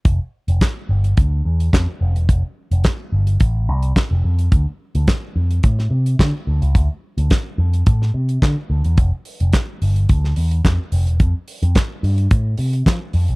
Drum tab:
HH |x--xx--xx--xx--x|x--xx--xx--xx--x|x--xx--xx--xx--x|x--xx--xx--xx--x|
CP |----x-------x---|----x-------x---|----x-------x---|----x-------x---|
SD |----o-------o---|----o-------o---|----o----o--o---|----o----o--o---|
BD |o---o---o---o---|o---o---o---o---|o---o---o---o---|o---o---o---o---|

HH |x-oxx-oxx-oxx-ox|x-oxx-oxx-oxx-ox|
CP |----x-------x---|----x-------x---|
SD |----o----o--o---|----o-------o---|
BD |o---o---o---o---|o---o---o---o---|